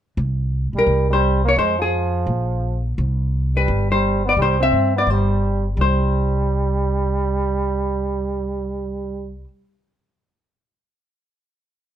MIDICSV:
0, 0, Header, 1, 4, 480
1, 0, Start_track
1, 0, Tempo, 349650
1, 244, Time_signature, 4, 2, 24, 8
1, 16413, End_track
2, 0, Start_track
2, 0, Title_t, "Hollow-body jazz guitar"
2, 0, Program_c, 0, 26
2, 1078, Note_on_c, 0, 70, 91
2, 1547, Note_off_c, 0, 70, 0
2, 1552, Note_on_c, 0, 72, 89
2, 2024, Note_off_c, 0, 72, 0
2, 2039, Note_on_c, 0, 73, 90
2, 2172, Note_off_c, 0, 73, 0
2, 2177, Note_on_c, 0, 72, 99
2, 2454, Note_off_c, 0, 72, 0
2, 2494, Note_on_c, 0, 68, 80
2, 3869, Note_off_c, 0, 68, 0
2, 4898, Note_on_c, 0, 71, 79
2, 5333, Note_off_c, 0, 71, 0
2, 5378, Note_on_c, 0, 72, 79
2, 5860, Note_off_c, 0, 72, 0
2, 5888, Note_on_c, 0, 74, 75
2, 6042, Note_off_c, 0, 74, 0
2, 6068, Note_on_c, 0, 72, 90
2, 6324, Note_off_c, 0, 72, 0
2, 6352, Note_on_c, 0, 76, 108
2, 6781, Note_off_c, 0, 76, 0
2, 6841, Note_on_c, 0, 74, 93
2, 7002, Note_off_c, 0, 74, 0
2, 7002, Note_on_c, 0, 72, 70
2, 7771, Note_off_c, 0, 72, 0
2, 7979, Note_on_c, 0, 72, 81
2, 13012, Note_off_c, 0, 72, 0
2, 16413, End_track
3, 0, Start_track
3, 0, Title_t, "Trombone"
3, 0, Program_c, 1, 57
3, 1040, Note_on_c, 1, 55, 66
3, 1481, Note_off_c, 1, 55, 0
3, 1511, Note_on_c, 1, 55, 83
3, 1957, Note_off_c, 1, 55, 0
3, 1984, Note_on_c, 1, 58, 82
3, 2147, Note_off_c, 1, 58, 0
3, 2155, Note_on_c, 1, 56, 83
3, 2442, Note_off_c, 1, 56, 0
3, 2457, Note_on_c, 1, 53, 76
3, 3850, Note_off_c, 1, 53, 0
3, 4887, Note_on_c, 1, 55, 62
3, 5327, Note_off_c, 1, 55, 0
3, 5369, Note_on_c, 1, 55, 68
3, 5809, Note_off_c, 1, 55, 0
3, 5836, Note_on_c, 1, 59, 72
3, 5999, Note_off_c, 1, 59, 0
3, 6008, Note_on_c, 1, 55, 78
3, 6292, Note_off_c, 1, 55, 0
3, 6316, Note_on_c, 1, 60, 78
3, 6762, Note_off_c, 1, 60, 0
3, 6809, Note_on_c, 1, 59, 69
3, 7010, Note_on_c, 1, 55, 63
3, 7031, Note_off_c, 1, 59, 0
3, 7775, Note_off_c, 1, 55, 0
3, 7927, Note_on_c, 1, 55, 70
3, 12810, Note_off_c, 1, 55, 0
3, 16413, End_track
4, 0, Start_track
4, 0, Title_t, "Upright bass"
4, 0, Program_c, 2, 32
4, 237, Note_on_c, 2, 36, 86
4, 969, Note_off_c, 2, 36, 0
4, 1003, Note_on_c, 2, 35, 57
4, 1178, Note_off_c, 2, 35, 0
4, 1187, Note_on_c, 2, 36, 78
4, 2108, Note_off_c, 2, 36, 0
4, 2140, Note_on_c, 2, 41, 76
4, 3065, Note_off_c, 2, 41, 0
4, 3109, Note_on_c, 2, 34, 79
4, 4030, Note_off_c, 2, 34, 0
4, 4091, Note_on_c, 2, 36, 84
4, 5003, Note_off_c, 2, 36, 0
4, 5051, Note_on_c, 2, 31, 86
4, 5963, Note_off_c, 2, 31, 0
4, 5994, Note_on_c, 2, 36, 78
4, 6449, Note_off_c, 2, 36, 0
4, 6481, Note_on_c, 2, 43, 59
4, 6932, Note_off_c, 2, 43, 0
4, 6954, Note_on_c, 2, 31, 80
4, 7875, Note_off_c, 2, 31, 0
4, 7919, Note_on_c, 2, 36, 78
4, 12951, Note_off_c, 2, 36, 0
4, 16413, End_track
0, 0, End_of_file